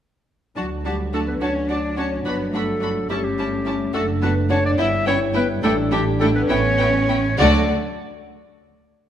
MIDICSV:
0, 0, Header, 1, 9, 480
1, 0, Start_track
1, 0, Key_signature, 2, "major"
1, 0, Tempo, 563910
1, 481, Time_signature, 6, 3, 24, 8
1, 4798, Tempo, 587659
1, 7619, End_track
2, 0, Start_track
2, 0, Title_t, "Violin section"
2, 0, Program_c, 0, 48
2, 484, Note_on_c, 0, 81, 39
2, 552, Note_off_c, 0, 81, 0
2, 730, Note_on_c, 0, 81, 39
2, 798, Note_off_c, 0, 81, 0
2, 977, Note_on_c, 0, 81, 35
2, 1045, Note_off_c, 0, 81, 0
2, 1217, Note_on_c, 0, 81, 40
2, 1285, Note_off_c, 0, 81, 0
2, 1458, Note_on_c, 0, 81, 38
2, 1526, Note_off_c, 0, 81, 0
2, 1698, Note_on_c, 0, 81, 38
2, 1766, Note_off_c, 0, 81, 0
2, 1930, Note_on_c, 0, 83, 41
2, 1998, Note_off_c, 0, 83, 0
2, 2169, Note_on_c, 0, 83, 41
2, 2238, Note_off_c, 0, 83, 0
2, 2408, Note_on_c, 0, 83, 38
2, 2476, Note_off_c, 0, 83, 0
2, 2649, Note_on_c, 0, 81, 47
2, 2717, Note_off_c, 0, 81, 0
2, 2887, Note_on_c, 0, 81, 45
2, 2955, Note_off_c, 0, 81, 0
2, 3121, Note_on_c, 0, 81, 48
2, 3189, Note_off_c, 0, 81, 0
2, 3360, Note_on_c, 0, 81, 48
2, 3428, Note_off_c, 0, 81, 0
2, 3591, Note_on_c, 0, 81, 49
2, 3660, Note_off_c, 0, 81, 0
2, 3838, Note_on_c, 0, 81, 49
2, 3906, Note_off_c, 0, 81, 0
2, 4067, Note_on_c, 0, 79, 56
2, 4135, Note_off_c, 0, 79, 0
2, 4307, Note_on_c, 0, 79, 62
2, 4375, Note_off_c, 0, 79, 0
2, 4549, Note_on_c, 0, 79, 58
2, 4617, Note_off_c, 0, 79, 0
2, 4795, Note_on_c, 0, 79, 62
2, 4861, Note_off_c, 0, 79, 0
2, 5023, Note_on_c, 0, 79, 64
2, 5089, Note_off_c, 0, 79, 0
2, 5261, Note_on_c, 0, 79, 55
2, 5326, Note_off_c, 0, 79, 0
2, 5496, Note_on_c, 0, 79, 62
2, 5561, Note_off_c, 0, 79, 0
2, 5733, Note_on_c, 0, 79, 62
2, 5798, Note_off_c, 0, 79, 0
2, 5981, Note_on_c, 0, 79, 55
2, 6047, Note_off_c, 0, 79, 0
2, 6229, Note_on_c, 0, 74, 65
2, 6499, Note_off_c, 0, 74, 0
2, 7619, End_track
3, 0, Start_track
3, 0, Title_t, "Clarinet"
3, 0, Program_c, 1, 71
3, 482, Note_on_c, 1, 66, 50
3, 590, Note_off_c, 1, 66, 0
3, 720, Note_on_c, 1, 67, 52
3, 829, Note_off_c, 1, 67, 0
3, 965, Note_on_c, 1, 69, 58
3, 1019, Note_off_c, 1, 69, 0
3, 1085, Note_on_c, 1, 71, 52
3, 1138, Note_off_c, 1, 71, 0
3, 1204, Note_on_c, 1, 73, 60
3, 1311, Note_off_c, 1, 73, 0
3, 1441, Note_on_c, 1, 74, 66
3, 1676, Note_off_c, 1, 74, 0
3, 1680, Note_on_c, 1, 73, 62
3, 1788, Note_off_c, 1, 73, 0
3, 1916, Note_on_c, 1, 71, 62
3, 2024, Note_off_c, 1, 71, 0
3, 2152, Note_on_c, 1, 69, 65
3, 2626, Note_off_c, 1, 69, 0
3, 2633, Note_on_c, 1, 67, 67
3, 2691, Note_on_c, 1, 69, 55
3, 2704, Note_off_c, 1, 67, 0
3, 2756, Note_on_c, 1, 67, 65
3, 2768, Note_off_c, 1, 69, 0
3, 3345, Note_off_c, 1, 67, 0
3, 3350, Note_on_c, 1, 69, 74
3, 3459, Note_off_c, 1, 69, 0
3, 3593, Note_on_c, 1, 71, 70
3, 3701, Note_off_c, 1, 71, 0
3, 3836, Note_on_c, 1, 73, 79
3, 3953, Note_off_c, 1, 73, 0
3, 3962, Note_on_c, 1, 74, 78
3, 4014, Note_off_c, 1, 74, 0
3, 4078, Note_on_c, 1, 76, 89
3, 4312, Note_off_c, 1, 76, 0
3, 4318, Note_on_c, 1, 73, 86
3, 4425, Note_off_c, 1, 73, 0
3, 4558, Note_on_c, 1, 71, 72
3, 4666, Note_off_c, 1, 71, 0
3, 4795, Note_on_c, 1, 69, 84
3, 4901, Note_off_c, 1, 69, 0
3, 5027, Note_on_c, 1, 67, 85
3, 5134, Note_off_c, 1, 67, 0
3, 5260, Note_on_c, 1, 69, 84
3, 5315, Note_off_c, 1, 69, 0
3, 5380, Note_on_c, 1, 71, 80
3, 5435, Note_off_c, 1, 71, 0
3, 5497, Note_on_c, 1, 73, 98
3, 6213, Note_off_c, 1, 73, 0
3, 6230, Note_on_c, 1, 74, 77
3, 6434, Note_off_c, 1, 74, 0
3, 7619, End_track
4, 0, Start_track
4, 0, Title_t, "Marimba"
4, 0, Program_c, 2, 12
4, 478, Note_on_c, 2, 66, 41
4, 704, Note_off_c, 2, 66, 0
4, 722, Note_on_c, 2, 67, 45
4, 946, Note_off_c, 2, 67, 0
4, 968, Note_on_c, 2, 69, 47
4, 1078, Note_off_c, 2, 69, 0
4, 1083, Note_on_c, 2, 71, 46
4, 1195, Note_off_c, 2, 71, 0
4, 1209, Note_on_c, 2, 73, 52
4, 1429, Note_off_c, 2, 73, 0
4, 1450, Note_on_c, 2, 74, 54
4, 1669, Note_off_c, 2, 74, 0
4, 1689, Note_on_c, 2, 73, 52
4, 1907, Note_off_c, 2, 73, 0
4, 1926, Note_on_c, 2, 71, 51
4, 2145, Note_off_c, 2, 71, 0
4, 2163, Note_on_c, 2, 69, 48
4, 2607, Note_off_c, 2, 69, 0
4, 2642, Note_on_c, 2, 67, 57
4, 3324, Note_off_c, 2, 67, 0
4, 3354, Note_on_c, 2, 69, 63
4, 3578, Note_off_c, 2, 69, 0
4, 3588, Note_on_c, 2, 71, 57
4, 3814, Note_off_c, 2, 71, 0
4, 3830, Note_on_c, 2, 73, 75
4, 3944, Note_off_c, 2, 73, 0
4, 3955, Note_on_c, 2, 74, 68
4, 4066, Note_off_c, 2, 74, 0
4, 4073, Note_on_c, 2, 76, 71
4, 4297, Note_off_c, 2, 76, 0
4, 4314, Note_on_c, 2, 73, 78
4, 4538, Note_off_c, 2, 73, 0
4, 4558, Note_on_c, 2, 71, 61
4, 4782, Note_off_c, 2, 71, 0
4, 4803, Note_on_c, 2, 69, 68
4, 5018, Note_off_c, 2, 69, 0
4, 5037, Note_on_c, 2, 67, 70
4, 5253, Note_off_c, 2, 67, 0
4, 5269, Note_on_c, 2, 69, 78
4, 5378, Note_off_c, 2, 69, 0
4, 5389, Note_on_c, 2, 71, 71
4, 5498, Note_off_c, 2, 71, 0
4, 5505, Note_on_c, 2, 73, 70
4, 6199, Note_off_c, 2, 73, 0
4, 6236, Note_on_c, 2, 74, 71
4, 6503, Note_off_c, 2, 74, 0
4, 7619, End_track
5, 0, Start_track
5, 0, Title_t, "Violin section"
5, 0, Program_c, 3, 48
5, 479, Note_on_c, 3, 66, 39
5, 547, Note_off_c, 3, 66, 0
5, 730, Note_on_c, 3, 66, 40
5, 798, Note_off_c, 3, 66, 0
5, 958, Note_on_c, 3, 66, 40
5, 1026, Note_off_c, 3, 66, 0
5, 1198, Note_on_c, 3, 66, 41
5, 1266, Note_off_c, 3, 66, 0
5, 1439, Note_on_c, 3, 66, 39
5, 1507, Note_off_c, 3, 66, 0
5, 1674, Note_on_c, 3, 66, 40
5, 1742, Note_off_c, 3, 66, 0
5, 1920, Note_on_c, 3, 66, 43
5, 1988, Note_off_c, 3, 66, 0
5, 2161, Note_on_c, 3, 66, 40
5, 2229, Note_off_c, 3, 66, 0
5, 2394, Note_on_c, 3, 66, 42
5, 2462, Note_off_c, 3, 66, 0
5, 2636, Note_on_c, 3, 64, 48
5, 2704, Note_off_c, 3, 64, 0
5, 2878, Note_on_c, 3, 64, 46
5, 2946, Note_off_c, 3, 64, 0
5, 3114, Note_on_c, 3, 64, 42
5, 3182, Note_off_c, 3, 64, 0
5, 3351, Note_on_c, 3, 66, 54
5, 3419, Note_off_c, 3, 66, 0
5, 3594, Note_on_c, 3, 66, 51
5, 3662, Note_off_c, 3, 66, 0
5, 3824, Note_on_c, 3, 66, 54
5, 3892, Note_off_c, 3, 66, 0
5, 4075, Note_on_c, 3, 64, 62
5, 4143, Note_off_c, 3, 64, 0
5, 4316, Note_on_c, 3, 64, 57
5, 4384, Note_off_c, 3, 64, 0
5, 4554, Note_on_c, 3, 64, 57
5, 4622, Note_off_c, 3, 64, 0
5, 4796, Note_on_c, 3, 64, 65
5, 4862, Note_off_c, 3, 64, 0
5, 5024, Note_on_c, 3, 64, 61
5, 5090, Note_off_c, 3, 64, 0
5, 5266, Note_on_c, 3, 64, 64
5, 5331, Note_off_c, 3, 64, 0
5, 5500, Note_on_c, 3, 64, 65
5, 5565, Note_off_c, 3, 64, 0
5, 5745, Note_on_c, 3, 64, 56
5, 5810, Note_off_c, 3, 64, 0
5, 5986, Note_on_c, 3, 64, 54
5, 6052, Note_off_c, 3, 64, 0
5, 6228, Note_on_c, 3, 66, 68
5, 6498, Note_off_c, 3, 66, 0
5, 7619, End_track
6, 0, Start_track
6, 0, Title_t, "Viola section"
6, 0, Program_c, 4, 48
6, 479, Note_on_c, 4, 62, 36
6, 547, Note_off_c, 4, 62, 0
6, 721, Note_on_c, 4, 62, 41
6, 789, Note_off_c, 4, 62, 0
6, 960, Note_on_c, 4, 62, 34
6, 1028, Note_off_c, 4, 62, 0
6, 1198, Note_on_c, 4, 62, 41
6, 1266, Note_off_c, 4, 62, 0
6, 1445, Note_on_c, 4, 62, 35
6, 1513, Note_off_c, 4, 62, 0
6, 1683, Note_on_c, 4, 62, 37
6, 1751, Note_off_c, 4, 62, 0
6, 1925, Note_on_c, 4, 62, 41
6, 1994, Note_off_c, 4, 62, 0
6, 2162, Note_on_c, 4, 62, 44
6, 2231, Note_off_c, 4, 62, 0
6, 2398, Note_on_c, 4, 62, 40
6, 2466, Note_off_c, 4, 62, 0
6, 2640, Note_on_c, 4, 61, 43
6, 2708, Note_off_c, 4, 61, 0
6, 2884, Note_on_c, 4, 61, 42
6, 2952, Note_off_c, 4, 61, 0
6, 3118, Note_on_c, 4, 61, 44
6, 3186, Note_off_c, 4, 61, 0
6, 3356, Note_on_c, 4, 62, 52
6, 3424, Note_off_c, 4, 62, 0
6, 3595, Note_on_c, 4, 62, 49
6, 3663, Note_off_c, 4, 62, 0
6, 3831, Note_on_c, 4, 62, 46
6, 3899, Note_off_c, 4, 62, 0
6, 4069, Note_on_c, 4, 59, 53
6, 4138, Note_off_c, 4, 59, 0
6, 4309, Note_on_c, 4, 59, 52
6, 4377, Note_off_c, 4, 59, 0
6, 4551, Note_on_c, 4, 59, 53
6, 4619, Note_off_c, 4, 59, 0
6, 4796, Note_on_c, 4, 62, 65
6, 4861, Note_off_c, 4, 62, 0
6, 5027, Note_on_c, 4, 62, 64
6, 5092, Note_off_c, 4, 62, 0
6, 5263, Note_on_c, 4, 62, 61
6, 5329, Note_off_c, 4, 62, 0
6, 5499, Note_on_c, 4, 59, 62
6, 5564, Note_off_c, 4, 59, 0
6, 5739, Note_on_c, 4, 59, 55
6, 5804, Note_off_c, 4, 59, 0
6, 5983, Note_on_c, 4, 59, 51
6, 6048, Note_off_c, 4, 59, 0
6, 6229, Note_on_c, 4, 57, 67
6, 6499, Note_off_c, 4, 57, 0
6, 7619, End_track
7, 0, Start_track
7, 0, Title_t, "French horn section"
7, 0, Program_c, 5, 60
7, 486, Note_on_c, 5, 54, 43
7, 486, Note_on_c, 5, 62, 46
7, 2607, Note_off_c, 5, 54, 0
7, 2607, Note_off_c, 5, 62, 0
7, 2638, Note_on_c, 5, 57, 51
7, 2638, Note_on_c, 5, 61, 51
7, 3354, Note_on_c, 5, 62, 56
7, 3357, Note_off_c, 5, 61, 0
7, 4059, Note_off_c, 5, 62, 0
7, 4073, Note_on_c, 5, 64, 61
7, 4074, Note_off_c, 5, 57, 0
7, 4076, Note_on_c, 5, 55, 64
7, 4797, Note_off_c, 5, 64, 0
7, 4797, Note_on_c, 5, 62, 69
7, 5490, Note_off_c, 5, 62, 0
7, 5504, Note_on_c, 5, 59, 71
7, 5957, Note_off_c, 5, 55, 0
7, 5988, Note_off_c, 5, 59, 0
7, 6225, Note_on_c, 5, 54, 72
7, 6225, Note_on_c, 5, 62, 68
7, 6431, Note_off_c, 5, 54, 0
7, 6431, Note_off_c, 5, 62, 0
7, 7619, End_track
8, 0, Start_track
8, 0, Title_t, "Cello section"
8, 0, Program_c, 6, 48
8, 479, Note_on_c, 6, 54, 53
8, 547, Note_off_c, 6, 54, 0
8, 725, Note_on_c, 6, 55, 46
8, 960, Note_off_c, 6, 55, 0
8, 963, Note_on_c, 6, 57, 46
8, 1081, Note_off_c, 6, 57, 0
8, 1084, Note_on_c, 6, 59, 44
8, 1204, Note_off_c, 6, 59, 0
8, 1204, Note_on_c, 6, 61, 52
8, 1438, Note_off_c, 6, 61, 0
8, 1442, Note_on_c, 6, 62, 50
8, 1681, Note_off_c, 6, 62, 0
8, 1683, Note_on_c, 6, 61, 52
8, 1920, Note_off_c, 6, 61, 0
8, 1920, Note_on_c, 6, 59, 58
8, 2154, Note_off_c, 6, 59, 0
8, 2158, Note_on_c, 6, 57, 48
8, 2629, Note_off_c, 6, 57, 0
8, 2637, Note_on_c, 6, 55, 56
8, 3341, Note_off_c, 6, 55, 0
8, 3359, Note_on_c, 6, 57, 69
8, 3427, Note_off_c, 6, 57, 0
8, 3595, Note_on_c, 6, 59, 64
8, 3663, Note_off_c, 6, 59, 0
8, 3833, Note_on_c, 6, 61, 62
8, 3882, Note_off_c, 6, 61, 0
8, 3952, Note_on_c, 6, 62, 62
8, 4071, Note_off_c, 6, 62, 0
8, 4074, Note_on_c, 6, 64, 71
8, 4142, Note_off_c, 6, 64, 0
8, 4315, Note_on_c, 6, 61, 70
8, 4383, Note_off_c, 6, 61, 0
8, 4556, Note_on_c, 6, 59, 67
8, 4624, Note_off_c, 6, 59, 0
8, 4794, Note_on_c, 6, 57, 81
8, 4859, Note_off_c, 6, 57, 0
8, 5030, Note_on_c, 6, 55, 68
8, 5096, Note_off_c, 6, 55, 0
8, 5266, Note_on_c, 6, 57, 71
8, 5382, Note_off_c, 6, 57, 0
8, 5384, Note_on_c, 6, 59, 69
8, 5502, Note_off_c, 6, 59, 0
8, 5504, Note_on_c, 6, 61, 80
8, 6217, Note_off_c, 6, 61, 0
8, 6233, Note_on_c, 6, 50, 74
8, 6501, Note_off_c, 6, 50, 0
8, 7619, End_track
9, 0, Start_track
9, 0, Title_t, "Double bass section"
9, 0, Program_c, 7, 48
9, 482, Note_on_c, 7, 38, 52
9, 1119, Note_off_c, 7, 38, 0
9, 1206, Note_on_c, 7, 38, 46
9, 1837, Note_off_c, 7, 38, 0
9, 1919, Note_on_c, 7, 31, 57
9, 2553, Note_off_c, 7, 31, 0
9, 2637, Note_on_c, 7, 31, 49
9, 3271, Note_off_c, 7, 31, 0
9, 3353, Note_on_c, 7, 30, 66
9, 3988, Note_off_c, 7, 30, 0
9, 4070, Note_on_c, 7, 31, 67
9, 4710, Note_off_c, 7, 31, 0
9, 4792, Note_on_c, 7, 33, 81
9, 5417, Note_off_c, 7, 33, 0
9, 5500, Note_on_c, 7, 33, 74
9, 6144, Note_off_c, 7, 33, 0
9, 6225, Note_on_c, 7, 38, 76
9, 6497, Note_off_c, 7, 38, 0
9, 7619, End_track
0, 0, End_of_file